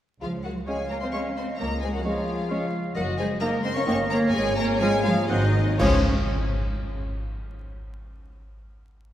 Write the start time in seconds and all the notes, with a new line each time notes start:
0.21 C#2 F3 F4 G#4 F5
0.44 F#3 F#4 A#4 F#5
0.66 G#3 C#4 G#4 C#5 F5 G#5
0.90 A#3 A#4 C#5 A#5
1.01 C4 C5 D#5 C6
1.12 G#3 C#4 C#5 F5 C#6
1.36 C4 C5 D#5 C6
1.58 C#2 A#3 A#4 C#5 D#5 A#5
1.81 G#3 G#4 C5 G#5
1.94 F#3 F#4 A#4 F#5
2.04 F3 G#3 C#4 F4 G#4 C#5 F5
2.49 G#3 C#4 C#5 F5
2.94 F#1 F#3 F#4 A#4 D#5 F#5
3.18 G#3 G#4 C5 G#5
3.40 A#3 D#4 A#4 D#5 A#5
3.64 C4 C5 D#5 C6
3.75 C#4 C#5 F5 C#6
3.87 G1 A#3 C#4 D#4 C#5 D#5 G5 C#6
4.10 A#3 A#4 C#5 A#5
4.33 G#1 G#3 G#4 C#5 G#5
4.57 A#3 A#4 C#5 A#5
4.80 F3 G#3 C#4 G#4 C#5 F5 G#5
5.03 F3 F4 G#4 F5
5.28 G#1 D#3 F#3 C4 D#4 F#4 C5 D#5 F#5
5.78 C#2 F3 G#3 C#4 G#4 C#5, concert bass drum, crash